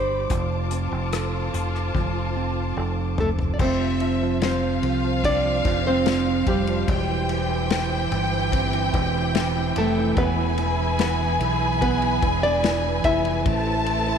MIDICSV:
0, 0, Header, 1, 7, 480
1, 0, Start_track
1, 0, Tempo, 821918
1, 177, Time_signature, 4, 2, 24, 8
1, 8281, End_track
2, 0, Start_track
2, 0, Title_t, "Violin section"
2, 0, Program_c, 0, 48
2, 2101, Note_on_c, 0, 76, 85
2, 2556, Note_off_c, 0, 76, 0
2, 2576, Note_on_c, 0, 77, 94
2, 3993, Note_off_c, 0, 77, 0
2, 4017, Note_on_c, 0, 79, 101
2, 5936, Note_on_c, 0, 80, 102
2, 5937, Note_off_c, 0, 79, 0
2, 7855, Note_on_c, 0, 81, 113
2, 7856, Note_off_c, 0, 80, 0
2, 8281, Note_off_c, 0, 81, 0
2, 8281, End_track
3, 0, Start_track
3, 0, Title_t, "String section"
3, 0, Program_c, 1, 48
3, 0, Note_on_c, 1, 67, 72
3, 0, Note_on_c, 1, 74, 59
3, 0, Note_on_c, 1, 83, 63
3, 0, Note_on_c, 1, 86, 68
3, 157, Note_off_c, 1, 67, 0
3, 157, Note_off_c, 1, 74, 0
3, 158, Note_off_c, 1, 83, 0
3, 170, Note_on_c, 1, 72, 57
3, 171, Note_on_c, 1, 65, 71
3, 174, Note_on_c, 1, 81, 66
3, 2074, Note_off_c, 1, 72, 0
3, 2075, Note_off_c, 1, 65, 0
3, 2075, Note_off_c, 1, 86, 0
3, 2076, Note_off_c, 1, 81, 0
3, 2101, Note_on_c, 1, 65, 67
3, 2101, Note_on_c, 1, 72, 70
3, 4000, Note_off_c, 1, 65, 0
3, 4016, Note_on_c, 1, 52, 74
3, 4017, Note_on_c, 1, 67, 66
3, 4017, Note_on_c, 1, 79, 85
3, 4018, Note_on_c, 1, 64, 72
3, 5916, Note_off_c, 1, 72, 0
3, 5918, Note_off_c, 1, 67, 0
3, 5918, Note_off_c, 1, 79, 0
3, 5936, Note_on_c, 1, 68, 74
3, 5939, Note_on_c, 1, 71, 70
3, 5939, Note_on_c, 1, 83, 80
3, 7833, Note_off_c, 1, 52, 0
3, 7834, Note_off_c, 1, 64, 0
3, 7837, Note_off_c, 1, 68, 0
3, 7839, Note_off_c, 1, 83, 0
3, 7858, Note_on_c, 1, 72, 67
3, 7859, Note_on_c, 1, 76, 75
3, 7860, Note_on_c, 1, 57, 74
3, 7860, Note_on_c, 1, 69, 68
3, 8281, Note_off_c, 1, 57, 0
3, 8281, Note_off_c, 1, 69, 0
3, 8281, Note_off_c, 1, 71, 0
3, 8281, Note_off_c, 1, 72, 0
3, 8281, Note_off_c, 1, 76, 0
3, 8281, End_track
4, 0, Start_track
4, 0, Title_t, "Nylon-string guitar"
4, 0, Program_c, 2, 24
4, 0, Note_on_c, 2, 72, 95
4, 876, Note_off_c, 2, 72, 0
4, 1866, Note_on_c, 2, 57, 66
4, 1871, Note_on_c, 2, 69, 80
4, 1919, Note_off_c, 2, 57, 0
4, 1923, Note_off_c, 2, 69, 0
4, 2065, Note_on_c, 2, 74, 60
4, 2102, Note_off_c, 2, 74, 0
4, 2110, Note_on_c, 2, 60, 61
4, 2110, Note_on_c, 2, 72, 79
4, 2560, Note_off_c, 2, 60, 0
4, 2580, Note_off_c, 2, 72, 0
4, 2586, Note_on_c, 2, 60, 65
4, 2589, Note_on_c, 2, 72, 96
4, 3039, Note_off_c, 2, 60, 0
4, 3065, Note_off_c, 2, 72, 0
4, 3067, Note_on_c, 2, 74, 116
4, 3070, Note_on_c, 2, 62, 83
4, 3400, Note_off_c, 2, 62, 0
4, 3426, Note_off_c, 2, 74, 0
4, 3428, Note_on_c, 2, 72, 83
4, 3431, Note_on_c, 2, 60, 72
4, 3761, Note_off_c, 2, 60, 0
4, 3783, Note_on_c, 2, 67, 86
4, 3785, Note_on_c, 2, 55, 68
4, 3793, Note_off_c, 2, 72, 0
4, 4476, Note_off_c, 2, 67, 0
4, 4478, Note_off_c, 2, 55, 0
4, 5710, Note_on_c, 2, 57, 71
4, 5713, Note_on_c, 2, 69, 89
4, 5928, Note_off_c, 2, 57, 0
4, 5944, Note_off_c, 2, 69, 0
4, 5946, Note_on_c, 2, 59, 70
4, 5947, Note_on_c, 2, 71, 84
4, 6398, Note_off_c, 2, 59, 0
4, 6417, Note_off_c, 2, 71, 0
4, 6424, Note_on_c, 2, 71, 77
4, 6426, Note_on_c, 2, 59, 65
4, 6878, Note_off_c, 2, 59, 0
4, 6895, Note_off_c, 2, 71, 0
4, 6902, Note_on_c, 2, 71, 102
4, 6905, Note_on_c, 2, 59, 80
4, 7238, Note_off_c, 2, 59, 0
4, 7258, Note_off_c, 2, 71, 0
4, 7261, Note_on_c, 2, 74, 91
4, 7265, Note_on_c, 2, 62, 73
4, 7597, Note_off_c, 2, 62, 0
4, 7618, Note_off_c, 2, 74, 0
4, 7620, Note_on_c, 2, 76, 107
4, 7624, Note_on_c, 2, 64, 77
4, 8281, Note_off_c, 2, 64, 0
4, 8281, Note_off_c, 2, 76, 0
4, 8281, End_track
5, 0, Start_track
5, 0, Title_t, "Tine electric piano"
5, 0, Program_c, 3, 4
5, 0, Control_c, 3, 64, 127
5, 0, Note_on_c, 3, 55, 44
5, 0, Note_on_c, 3, 62, 49
5, 155, Note_off_c, 3, 55, 0
5, 162, Note_off_c, 3, 62, 0
5, 178, Note_on_c, 3, 53, 59
5, 185, Control_c, 3, 64, 0
5, 287, Control_c, 3, 64, 127
5, 416, Note_on_c, 3, 60, 51
5, 659, Note_on_c, 3, 69, 56
5, 1134, Note_off_c, 3, 53, 0
5, 1141, Note_on_c, 3, 53, 62
5, 1353, Note_off_c, 3, 60, 0
5, 1382, Note_on_c, 3, 60, 55
5, 1595, Note_off_c, 3, 69, 0
5, 1622, Note_on_c, 3, 69, 47
5, 2075, Note_off_c, 3, 53, 0
5, 2078, Note_off_c, 3, 60, 0
5, 2085, Note_off_c, 3, 69, 0
5, 2102, Note_on_c, 3, 53, 59
5, 2105, Control_c, 3, 64, 0
5, 2215, Control_c, 3, 64, 127
5, 2217, Note_off_c, 3, 53, 0
5, 2224, Note_on_c, 3, 53, 54
5, 2339, Note_off_c, 3, 53, 0
5, 2346, Note_on_c, 3, 53, 56
5, 2462, Note_off_c, 3, 53, 0
5, 2469, Note_on_c, 3, 53, 58
5, 2581, Note_off_c, 3, 53, 0
5, 2588, Note_on_c, 3, 53, 48
5, 2700, Note_off_c, 3, 53, 0
5, 2707, Note_on_c, 3, 53, 57
5, 2821, Note_off_c, 3, 53, 0
5, 2828, Note_on_c, 3, 53, 49
5, 2938, Note_off_c, 3, 53, 0
5, 2945, Note_on_c, 3, 53, 55
5, 3065, Note_on_c, 3, 60, 74
5, 3177, Note_off_c, 3, 53, 0
5, 3184, Note_on_c, 3, 53, 58
5, 3295, Note_off_c, 3, 53, 0
5, 3302, Note_on_c, 3, 53, 51
5, 3417, Note_off_c, 3, 53, 0
5, 3424, Note_on_c, 3, 53, 55
5, 3536, Note_off_c, 3, 53, 0
5, 3543, Note_on_c, 3, 53, 58
5, 3658, Note_off_c, 3, 53, 0
5, 3665, Note_on_c, 3, 53, 53
5, 3779, Note_off_c, 3, 53, 0
5, 3786, Note_on_c, 3, 53, 50
5, 3898, Note_off_c, 3, 53, 0
5, 3905, Note_on_c, 3, 53, 66
5, 3998, Note_off_c, 3, 60, 0
5, 4018, Note_off_c, 3, 53, 0
5, 4023, Control_c, 3, 64, 0
5, 4024, Note_on_c, 3, 52, 61
5, 4118, Control_c, 3, 64, 127
5, 4136, Note_off_c, 3, 52, 0
5, 4143, Note_on_c, 3, 52, 51
5, 4257, Note_off_c, 3, 52, 0
5, 4264, Note_on_c, 3, 52, 57
5, 4375, Note_off_c, 3, 52, 0
5, 4382, Note_on_c, 3, 52, 60
5, 4496, Note_off_c, 3, 52, 0
5, 4503, Note_on_c, 3, 52, 51
5, 4616, Note_off_c, 3, 52, 0
5, 4623, Note_on_c, 3, 52, 58
5, 4738, Note_off_c, 3, 52, 0
5, 4745, Note_on_c, 3, 52, 49
5, 4859, Note_off_c, 3, 52, 0
5, 4866, Note_on_c, 3, 52, 58
5, 4982, Note_on_c, 3, 60, 73
5, 5095, Note_off_c, 3, 52, 0
5, 5102, Note_on_c, 3, 52, 59
5, 5212, Note_off_c, 3, 52, 0
5, 5219, Note_on_c, 3, 52, 53
5, 5333, Note_off_c, 3, 52, 0
5, 5340, Note_on_c, 3, 52, 51
5, 5460, Note_off_c, 3, 52, 0
5, 5467, Note_on_c, 3, 52, 56
5, 5576, Note_off_c, 3, 52, 0
5, 5583, Note_on_c, 3, 52, 54
5, 5698, Note_off_c, 3, 52, 0
5, 5705, Note_on_c, 3, 52, 49
5, 5818, Note_off_c, 3, 52, 0
5, 5825, Note_on_c, 3, 52, 66
5, 5916, Note_off_c, 3, 60, 0
5, 5937, Note_off_c, 3, 52, 0
5, 5943, Control_c, 3, 64, 0
5, 5947, Note_on_c, 3, 52, 60
5, 6057, Control_c, 3, 64, 127
5, 6059, Note_off_c, 3, 52, 0
5, 6066, Note_on_c, 3, 52, 57
5, 6178, Note_off_c, 3, 52, 0
5, 6185, Note_on_c, 3, 52, 56
5, 6299, Note_off_c, 3, 52, 0
5, 6306, Note_on_c, 3, 52, 57
5, 6418, Note_off_c, 3, 52, 0
5, 6425, Note_on_c, 3, 52, 58
5, 6539, Note_off_c, 3, 52, 0
5, 6546, Note_on_c, 3, 52, 54
5, 6655, Note_off_c, 3, 52, 0
5, 6663, Note_on_c, 3, 52, 51
5, 6775, Note_off_c, 3, 52, 0
5, 6782, Note_on_c, 3, 52, 59
5, 6902, Note_on_c, 3, 59, 72
5, 7018, Note_off_c, 3, 52, 0
5, 7025, Note_on_c, 3, 52, 61
5, 7136, Note_off_c, 3, 52, 0
5, 7143, Note_on_c, 3, 52, 57
5, 7255, Note_off_c, 3, 52, 0
5, 7262, Note_on_c, 3, 52, 54
5, 7375, Note_off_c, 3, 52, 0
5, 7382, Note_on_c, 3, 52, 56
5, 7492, Note_off_c, 3, 52, 0
5, 7499, Note_on_c, 3, 52, 53
5, 7617, Note_off_c, 3, 52, 0
5, 7624, Note_on_c, 3, 52, 59
5, 7737, Note_off_c, 3, 52, 0
5, 7744, Note_on_c, 3, 52, 69
5, 7836, Note_off_c, 3, 59, 0
5, 7857, Note_off_c, 3, 52, 0
5, 7864, Note_on_c, 3, 57, 72
5, 7866, Control_c, 3, 64, 0
5, 7956, Control_c, 3, 64, 127
5, 7983, Note_on_c, 3, 64, 53
5, 8097, Note_off_c, 3, 57, 0
5, 8104, Note_on_c, 3, 57, 51
5, 8218, Note_off_c, 3, 64, 0
5, 8225, Note_on_c, 3, 64, 62
5, 8281, Note_off_c, 3, 57, 0
5, 8281, Note_off_c, 3, 64, 0
5, 8281, End_track
6, 0, Start_track
6, 0, Title_t, "Fingered electric bass"
6, 0, Program_c, 4, 33
6, 0, Note_on_c, 4, 31, 72
6, 159, Note_off_c, 4, 31, 0
6, 177, Note_on_c, 4, 29, 102
6, 513, Note_off_c, 4, 29, 0
6, 535, Note_on_c, 4, 29, 84
6, 872, Note_off_c, 4, 29, 0
6, 896, Note_on_c, 4, 29, 83
6, 1120, Note_off_c, 4, 29, 0
6, 1137, Note_on_c, 4, 29, 90
6, 1594, Note_off_c, 4, 29, 0
6, 1615, Note_on_c, 4, 29, 92
6, 2073, Note_off_c, 4, 29, 0
6, 2097, Note_on_c, 4, 29, 94
6, 2794, Note_off_c, 4, 29, 0
6, 2816, Note_on_c, 4, 36, 77
6, 3273, Note_off_c, 4, 36, 0
6, 3300, Note_on_c, 4, 29, 97
6, 3755, Note_off_c, 4, 29, 0
6, 3776, Note_on_c, 4, 29, 68
6, 4000, Note_off_c, 4, 29, 0
6, 4019, Note_on_c, 4, 28, 96
6, 4715, Note_off_c, 4, 28, 0
6, 4737, Note_on_c, 4, 31, 89
6, 5194, Note_off_c, 4, 31, 0
6, 5218, Note_on_c, 4, 28, 99
6, 5674, Note_off_c, 4, 28, 0
6, 5700, Note_on_c, 4, 29, 79
6, 5922, Note_off_c, 4, 29, 0
6, 5938, Note_on_c, 4, 28, 108
6, 6634, Note_off_c, 4, 28, 0
6, 6656, Note_on_c, 4, 35, 90
6, 7113, Note_off_c, 4, 35, 0
6, 7139, Note_on_c, 4, 28, 93
6, 7595, Note_off_c, 4, 28, 0
6, 7617, Note_on_c, 4, 29, 84
6, 7840, Note_off_c, 4, 29, 0
6, 7860, Note_on_c, 4, 33, 93
6, 8281, Note_off_c, 4, 33, 0
6, 8281, End_track
7, 0, Start_track
7, 0, Title_t, "Drums"
7, 174, Note_on_c, 9, 42, 72
7, 176, Note_on_c, 9, 36, 89
7, 232, Note_off_c, 9, 42, 0
7, 235, Note_off_c, 9, 36, 0
7, 413, Note_on_c, 9, 42, 59
7, 472, Note_off_c, 9, 42, 0
7, 657, Note_on_c, 9, 42, 70
7, 661, Note_on_c, 9, 37, 103
7, 716, Note_off_c, 9, 42, 0
7, 720, Note_off_c, 9, 37, 0
7, 900, Note_on_c, 9, 42, 60
7, 958, Note_off_c, 9, 42, 0
7, 1022, Note_on_c, 9, 37, 35
7, 1081, Note_off_c, 9, 37, 0
7, 1137, Note_on_c, 9, 36, 85
7, 1137, Note_on_c, 9, 48, 51
7, 1195, Note_off_c, 9, 36, 0
7, 1196, Note_off_c, 9, 48, 0
7, 1858, Note_on_c, 9, 43, 92
7, 1916, Note_off_c, 9, 43, 0
7, 1978, Note_on_c, 9, 43, 83
7, 2036, Note_off_c, 9, 43, 0
7, 2099, Note_on_c, 9, 36, 100
7, 2099, Note_on_c, 9, 49, 82
7, 2157, Note_off_c, 9, 36, 0
7, 2157, Note_off_c, 9, 49, 0
7, 2337, Note_on_c, 9, 51, 44
7, 2395, Note_off_c, 9, 51, 0
7, 2579, Note_on_c, 9, 51, 62
7, 2583, Note_on_c, 9, 38, 117
7, 2637, Note_off_c, 9, 51, 0
7, 2641, Note_off_c, 9, 38, 0
7, 2820, Note_on_c, 9, 51, 48
7, 2879, Note_off_c, 9, 51, 0
7, 3059, Note_on_c, 9, 36, 82
7, 3062, Note_on_c, 9, 51, 72
7, 3118, Note_off_c, 9, 36, 0
7, 3121, Note_off_c, 9, 51, 0
7, 3299, Note_on_c, 9, 36, 93
7, 3299, Note_on_c, 9, 51, 56
7, 3357, Note_off_c, 9, 51, 0
7, 3358, Note_off_c, 9, 36, 0
7, 3538, Note_on_c, 9, 51, 67
7, 3542, Note_on_c, 9, 38, 107
7, 3596, Note_off_c, 9, 51, 0
7, 3601, Note_off_c, 9, 38, 0
7, 3776, Note_on_c, 9, 36, 92
7, 3776, Note_on_c, 9, 51, 67
7, 3834, Note_off_c, 9, 51, 0
7, 3835, Note_off_c, 9, 36, 0
7, 3897, Note_on_c, 9, 51, 43
7, 3955, Note_off_c, 9, 51, 0
7, 4018, Note_on_c, 9, 51, 68
7, 4019, Note_on_c, 9, 36, 102
7, 4077, Note_off_c, 9, 36, 0
7, 4077, Note_off_c, 9, 51, 0
7, 4258, Note_on_c, 9, 51, 53
7, 4316, Note_off_c, 9, 51, 0
7, 4499, Note_on_c, 9, 51, 66
7, 4503, Note_on_c, 9, 38, 114
7, 4557, Note_off_c, 9, 51, 0
7, 4561, Note_off_c, 9, 38, 0
7, 4740, Note_on_c, 9, 51, 53
7, 4799, Note_off_c, 9, 51, 0
7, 4978, Note_on_c, 9, 36, 92
7, 4982, Note_on_c, 9, 51, 75
7, 5036, Note_off_c, 9, 36, 0
7, 5040, Note_off_c, 9, 51, 0
7, 5099, Note_on_c, 9, 51, 40
7, 5158, Note_off_c, 9, 51, 0
7, 5219, Note_on_c, 9, 36, 84
7, 5219, Note_on_c, 9, 51, 58
7, 5277, Note_off_c, 9, 36, 0
7, 5277, Note_off_c, 9, 51, 0
7, 5459, Note_on_c, 9, 51, 72
7, 5463, Note_on_c, 9, 38, 112
7, 5518, Note_off_c, 9, 51, 0
7, 5522, Note_off_c, 9, 38, 0
7, 5699, Note_on_c, 9, 51, 71
7, 5757, Note_off_c, 9, 51, 0
7, 5938, Note_on_c, 9, 36, 102
7, 5938, Note_on_c, 9, 51, 67
7, 5996, Note_off_c, 9, 51, 0
7, 5997, Note_off_c, 9, 36, 0
7, 6177, Note_on_c, 9, 51, 53
7, 6235, Note_off_c, 9, 51, 0
7, 6418, Note_on_c, 9, 51, 68
7, 6422, Note_on_c, 9, 38, 102
7, 6476, Note_off_c, 9, 51, 0
7, 6480, Note_off_c, 9, 38, 0
7, 6661, Note_on_c, 9, 51, 52
7, 6719, Note_off_c, 9, 51, 0
7, 6898, Note_on_c, 9, 36, 78
7, 6902, Note_on_c, 9, 51, 63
7, 6957, Note_off_c, 9, 36, 0
7, 6960, Note_off_c, 9, 51, 0
7, 7020, Note_on_c, 9, 51, 37
7, 7078, Note_off_c, 9, 51, 0
7, 7139, Note_on_c, 9, 36, 91
7, 7139, Note_on_c, 9, 51, 60
7, 7197, Note_off_c, 9, 51, 0
7, 7198, Note_off_c, 9, 36, 0
7, 7380, Note_on_c, 9, 51, 67
7, 7384, Note_on_c, 9, 38, 101
7, 7438, Note_off_c, 9, 51, 0
7, 7442, Note_off_c, 9, 38, 0
7, 7616, Note_on_c, 9, 36, 90
7, 7616, Note_on_c, 9, 51, 62
7, 7674, Note_off_c, 9, 51, 0
7, 7675, Note_off_c, 9, 36, 0
7, 7737, Note_on_c, 9, 51, 42
7, 7796, Note_off_c, 9, 51, 0
7, 7858, Note_on_c, 9, 51, 65
7, 7859, Note_on_c, 9, 36, 105
7, 7917, Note_off_c, 9, 51, 0
7, 7918, Note_off_c, 9, 36, 0
7, 8097, Note_on_c, 9, 51, 49
7, 8155, Note_off_c, 9, 51, 0
7, 8281, End_track
0, 0, End_of_file